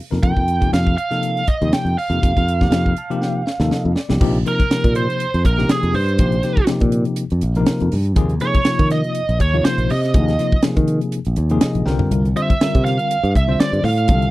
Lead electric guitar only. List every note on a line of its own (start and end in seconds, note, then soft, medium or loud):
0.23 0.70 G5 medium
0.74 0.96 F5 medium
0.98 1.49 F5 medium
1.48 1.74 D#5 medium
1.73 1.98 G5 medium
1.98 3.92 F5 medium
4.48 4.93 A#4 medium
4.96 5.42 C5 medium
5.46 5.69 A#4 medium
5.71 5.94 G#4 medium
5.95 6.65 C5 medium
8.41 8.87 C#5 medium
8.92 9.37 D#5 loud
9.41 9.65 C#5 medium
9.65 9.89 C5 medium
9.91 10.61 D#5 medium
12.37 12.83 E5 medium
12.85 13.31 F5 medium
13.36 13.60 E5 medium
13.61 13.84 D5 medium
13.85 14.31 F5 medium